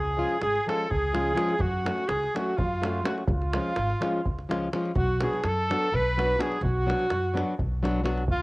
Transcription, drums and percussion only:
0.29 davul high soft
0.42 davul high medium
0.56 davul high soft
0.69 davul high medium
0.91 davul low medium
1.15 davul high medium
1.38 davul high medium
1.49 davul high soft
1.60 davul low medium
1.86 davul high medium
1.98 davul high soft
2.09 davul high medium
2.23 davul high soft
2.36 davul high medium
2.58 davul low loud
2.83 davul high medium
3.05 davul high medium
3.18 davul high soft
3.28 davul low loud
3.42 davul high soft
3.53 davul high medium
3.76 davul high medium
3.90 davul high soft
4.02 davul high medium
4.26 davul low medium
4.39 davul high soft
4.51 davul high medium
4.73 davul high medium
4.85 davul high soft
4.96 davul low medium
5.21 davul high medium
5.33 davul high soft
5.44 davul high medium
5.71 davul high medium
5.94 davul low medium
6.19 davul high medium
6.41 davul high medium
6.52 davul high soft
6.63 davul low medium
6.90 davul high medium
6.99 davul high soft
7.10 davul high medium
7.37 davul high medium
7.59 davul low medium
7.85 davul high medium
8.06 davul high medium
8.18 davul high soft
8.28 davul low medium

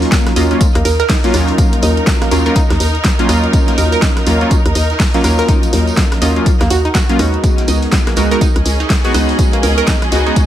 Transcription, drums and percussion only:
0.02 closed hi-hat soft
0.12 kick loud
0.12 snare loud
0.12 closed hi-hat medium
0.12 tambourine medium
0.26 cross-stick medium
0.26 snare soft
0.26 closed hi-hat medium
0.36 open hi-hat loud
0.36 tambourine medium
0.51 closed hi-hat soft
0.61 kick loud
0.61 closed hi-hat medium
0.61 tambourine loud
0.75 cross-stick medium
0.75 closed hi-hat medium
0.85 open hi-hat loud
0.85 tambourine medium
1.00 snare soft
1.00 closed hi-hat soft
1.09 kick loud
1.09 snare loud
1.09 closed hi-hat medium
1.09 open hi-hat medium
1.24 closed hi-hat medium
1.34 cross-stick medium
1.34 open hi-hat loud
1.34 tambourine medium
1.47 closed hi-hat soft
1.58 kick loud
1.58 closed hi-hat medium
1.58 tambourine medium
1.73 closed hi-hat medium
1.82 open hi-hat loud
1.82 tambourine medium
1.97 closed hi-hat soft
2.07 kick loud
2.07 snare loud
2.07 closed hi-hat medium
2.07 tambourine loud
2.22 cross-stick medium
2.22 snare soft
2.22 closed hi-hat medium
2.31 snare medium
2.31 open hi-hat loud
2.31 tambourine medium
2.46 closed hi-hat soft
2.55 kick loud
2.55 closed hi-hat medium
2.55 tambourine medium
2.70 cross-stick medium
2.70 snare soft
2.70 closed hi-hat medium
2.80 open hi-hat loud
2.80 tambourine medium
2.95 closed hi-hat soft
3.04 kick loud
3.04 snare loud
3.04 closed hi-hat medium
3.04 tambourine medium
3.19 snare soft
3.19 closed hi-hat medium
3.29 cross-stick medium
3.29 open hi-hat loud
3.29 tambourine medium
3.44 closed hi-hat soft
3.53 kick loud
3.53 closed hi-hat medium
3.53 tambourine medium
3.68 snare medium
3.68 closed hi-hat medium
3.78 open hi-hat loud
3.78 tambourine medium
3.92 closed hi-hat soft
4.02 kick loud
4.02 snare loud
4.02 closed hi-hat medium
4.02 tambourine medium
4.17 cross-stick medium
4.17 snare soft
4.17 closed hi-hat medium
4.27 open hi-hat loud
4.27 tambourine medium
4.41 closed hi-hat soft
4.51 kick loud
4.51 closed hi-hat medium
4.51 tambourine medium
4.66 cross-stick medium
4.66 closed hi-hat medium
4.75 open hi-hat loud
4.75 tambourine medium
4.90 snare soft
4.90 closed hi-hat soft
5.00 kick loud
5.00 snare loud
5.00 closed hi-hat medium
5.00 open hi-hat medium
5.14 closed hi-hat medium
5.24 cross-stick medium
5.24 open hi-hat loud
5.24 tambourine medium
5.39 snare soft
5.39 closed hi-hat soft
5.49 kick loud
5.49 closed hi-hat medium
5.49 tambourine medium
5.63 closed hi-hat soft
5.63 tambourine medium
5.73 snare soft
5.73 open hi-hat loud
5.87 closed hi-hat soft
5.87 tambourine medium
5.97 kick loud
5.97 snare loud
5.97 closed hi-hat medium
5.97 tambourine loud
6.12 cross-stick medium
6.12 snare soft
6.12 closed hi-hat soft
6.22 snare medium
6.22 open hi-hat loud
6.22 tambourine medium
6.36 closed hi-hat soft
6.46 kick loud
6.46 closed hi-hat medium
6.46 tambourine medium
6.61 cross-stick medium
6.61 snare soft
6.61 closed hi-hat medium
6.70 open hi-hat loud
6.70 tambourine medium
6.85 closed hi-hat soft
6.94 kick loud
6.94 snare loud
6.94 closed hi-hat medium
6.94 tambourine medium
7.09 snare soft
7.09 closed hi-hat medium
7.19 cross-stick medium
7.19 open hi-hat loud
7.19 tambourine medium
7.34 closed hi-hat soft
7.44 kick loud
7.44 closed hi-hat medium
7.44 tambourine medium
7.58 snare soft
7.58 closed hi-hat soft
7.68 open hi-hat loud
7.68 tambourine medium
7.82 closed hi-hat soft
7.92 kick loud
7.92 snare loud
7.92 closed hi-hat medium
7.92 tambourine medium
8.07 cross-stick medium
8.07 snare soft
8.07 closed hi-hat soft
8.16 open hi-hat loud
8.16 tambourine medium
8.31 closed hi-hat soft
8.41 kick loud
8.41 closed hi-hat medium
8.41 tambourine medium
8.56 cross-stick medium
8.56 closed hi-hat medium
8.65 open hi-hat loud
8.65 tambourine medium
8.80 snare soft
8.80 closed hi-hat soft
8.90 kick loud
8.90 snare loud
8.90 closed hi-hat medium
8.90 open hi-hat medium
9.05 closed hi-hat medium
9.14 cross-stick medium
9.14 open hi-hat loud
9.14 tambourine medium
9.29 closed hi-hat soft
9.39 kick loud
9.39 closed hi-hat medium
9.39 tambourine medium
9.53 closed hi-hat medium
9.63 open hi-hat loud
9.63 tambourine medium
9.78 closed hi-hat soft
9.87 kick loud
9.87 snare loud
9.87 closed hi-hat medium
9.87 tambourine medium
10.02 cross-stick medium
10.02 snare soft
10.02 closed hi-hat medium
10.12 snare medium
10.12 open hi-hat loud
10.12 tambourine medium
10.27 closed hi-hat soft
10.36 kick loud
10.36 closed hi-hat medium
10.36 tambourine medium

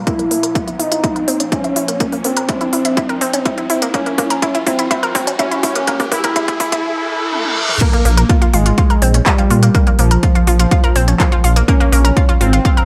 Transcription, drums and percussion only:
0.07 kick loud
0.07 closed hi-hat soft
0.19 closed hi-hat soft
0.31 open hi-hat loud
0.43 closed hi-hat medium
0.55 kick loud
0.55 closed hi-hat soft
0.68 closed hi-hat soft
0.80 open hi-hat loud
0.92 closed hi-hat medium
1.04 kick loud
1.04 closed hi-hat medium
1.16 closed hi-hat soft
1.28 open hi-hat loud
1.40 closed hi-hat medium
1.52 kick loud
1.52 closed hi-hat medium
1.64 closed hi-hat soft
1.76 open hi-hat loud
1.88 closed hi-hat medium
2.00 kick loud
2.00 closed hi-hat medium
2.12 open hi-hat medium
2.24 open hi-hat loud
2.37 closed hi-hat medium
2.49 kick loud
2.49 closed hi-hat medium
2.61 closed hi-hat soft
2.73 open hi-hat loud
2.85 closed hi-hat medium
2.97 kick loud
2.97 closed hi-hat medium
3.09 closed hi-hat soft
3.21 open hi-hat loud
3.33 closed hi-hat medium
3.45 kick loud
3.45 closed hi-hat medium
3.58 closed hi-hat soft
3.70 open hi-hat loud
3.82 closed hi-hat medium
3.94 kick loud
3.94 closed hi-hat medium
4.06 closed hi-hat soft
4.18 kick loud
4.18 open hi-hat loud
4.30 closed hi-hat medium
4.42 kick loud
4.42 closed hi-hat medium
4.55 closed hi-hat soft
4.66 kick loud
4.66 open hi-hat loud
4.79 closed hi-hat medium
4.91 kick loud
4.91 closed hi-hat medium
5.03 closed hi-hat soft
5.15 kick loud
5.15 open hi-hat loud
5.27 closed hi-hat medium
5.39 kick loud
5.39 closed hi-hat medium
5.51 closed hi-hat soft
5.63 kick loud
5.63 open hi-hat loud
5.75 closed hi-hat medium
5.87 kick loud
5.87 closed hi-hat medium
6.00 kick medium
6.00 open hi-hat medium
6.12 kick loud
6.12 open hi-hat loud
6.24 kick loud
6.24 closed hi-hat medium
6.36 kick loud
6.36 closed hi-hat medium
6.48 kick medium
6.48 closed hi-hat soft
6.60 kick loud
6.60 open hi-hat loud
6.72 kick medium
6.72 closed hi-hat medium
7.33 high tom medium
7.45 high tom medium
7.69 mid tom medium
7.81 kick loud
7.81 closed hi-hat medium
7.81 crash loud
7.93 closed hi-hat soft
8.05 open hi-hat loud
8.17 closed hi-hat medium
8.29 kick loud
8.29 closed hi-hat medium
8.42 closed hi-hat soft
8.54 open hi-hat medium
8.66 closed hi-hat medium
8.78 kick loud
8.78 closed hi-hat medium
8.90 closed hi-hat soft
9.02 open hi-hat loud
9.14 closed hi-hat medium
9.26 kick loud
9.26 clap loud
9.26 closed hi-hat medium
9.38 closed hi-hat soft
9.50 open hi-hat medium
9.63 closed hi-hat medium
9.75 kick loud
9.75 closed hi-hat medium
9.87 closed hi-hat soft
9.99 open hi-hat loud
10.11 closed hi-hat medium
10.23 kick loud
10.23 closed hi-hat medium
10.35 closed hi-hat soft
10.47 open hi-hat loud
10.59 closed hi-hat medium
10.71 kick loud
10.71 closed hi-hat medium
10.84 closed hi-hat soft
10.96 open hi-hat loud
11.08 closed hi-hat medium
11.20 kick loud
11.20 clap loud
11.20 closed hi-hat medium
11.32 closed hi-hat soft
11.44 open hi-hat loud
11.56 closed hi-hat medium
11.68 kick loud
11.68 closed hi-hat medium
11.81 closed hi-hat soft
11.93 open hi-hat loud
12.05 closed hi-hat medium
12.17 kick loud
12.17 closed hi-hat medium
12.29 closed hi-hat soft
12.41 open hi-hat loud
12.53 closed hi-hat medium
12.65 kick loud
12.65 closed hi-hat medium
12.77 closed hi-hat soft

